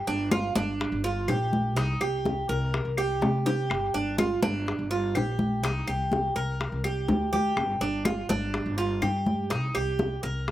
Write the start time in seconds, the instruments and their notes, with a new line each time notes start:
0.07 upright bass G1, cuban tres D4, high bongo, high conga
0.31 cuban tres F4, high bongo, high conga, claves
0.56 upright bass G1, cuban tres D4, high bongo, high conga
0.80 high bongo, high conga
0.92 upright bass G1
1.04 cuban tres F4, high bongo, high conga
1.28 upright bass A#1, cuban tres G4, high bongo, low bongo, high conga, claves
1.53 high conga
1.76 upright bass C2, cuban tres D#4, high bongo, high conga
2.00 upright bass C2, cuban tres G4, high bongo, high conga, claves
2.25 high bongo, high conga
2.49 upright bass C2, cuban tres A#4, high bongo, high conga
2.74 high bongo, high conga
2.85 upright bass C2
2.97 cuban tres G4, high bongo, high conga, claves
3.21 upright bass C3, high bongo, high conga
3.46 cuban tres G4, low bongo
3.70 upright bass G1, high bongo, high conga, claves
3.94 upright bass G1, cuban tres D4, high bongo, high conga
4.18 cuban tres F4, high bongo, high conga, claves
4.42 upright bass G1, cuban tres D4, high bongo, high conga
4.67 high bongo, high conga
4.79 upright bass G1
4.91 cuban tres F4, high bongo, high conga
5.15 upright bass A#1, cuban tres G4, high bongo, low bongo, high conga, claves
5.39 high conga
5.63 upright bass C2, cuban tres D#4, high bongo, high conga
5.88 upright bass C2, cuban tres G4, high bongo, high conga, claves
6.12 high bongo, high conga
6.36 upright bass C2, cuban tres A#4, high bongo, high conga
6.60 high bongo, high conga
6.72 upright bass C2
6.84 cuban tres G4, high bongo, high conga, claves
7.08 upright bass D2, high bongo, low bongo, high conga
7.33 cuban tres G4, high conga
7.57 upright bass G1, high bongo, high conga, claves
7.81 upright bass G1, cuban tres D4, high bongo, high conga
8.05 cuban tres F4, high bongo, high conga, claves
8.29 upright bass G1, cuban tres D4, high bongo, high conga
8.54 high bongo, high conga
8.66 upright bass G1
8.78 cuban tres F4, high bongo, high conga
9.02 upright bass G2, cuban tres G4, high bongo, low bongo, high conga, claves
9.26 high conga
9.50 upright bass C2, cuban tres D#4, high bongo, high conga
9.75 upright bass C2, cuban tres G4, high bongo, high conga, claves
9.99 high bongo, high conga
10.23 upright bass C2, cuban tres A#4, high bongo, high conga
10.48 high bongo, high conga